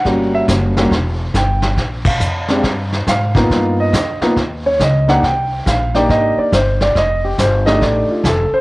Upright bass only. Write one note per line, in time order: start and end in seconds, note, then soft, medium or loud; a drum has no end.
0.05 0.47 G1 medium
0.48 0.90 F#1 medium
0.91 1.33 E1 medium
1.34 1.76 G1 medium
1.77 2.19 A#1 medium
2.20 2.62 F2 loud
2.63 3.05 G2 medium
3.07 3.49 G#2 medium
3.50 3.92 G2 medium
3.93 4.19 F2 medium
4.21 muted upright bass stroke soft
4.37 4.78 D#2 medium
4.79 5.21 C#2 medium
5.23 5.65 C2 medium
5.66 6.08 A#1 medium
6.09 6.35 G#1 medium
6.37 muted upright bass stroke soft
6.52 6.94 G1 medium
6.95 7.37 F1 medium
7.38 7.80 G1 medium
7.81 8.07 A1 medium
8.09 muted upright bass stroke soft
8.24 8.50 F1 medium
8.51 muted upright bass stroke soft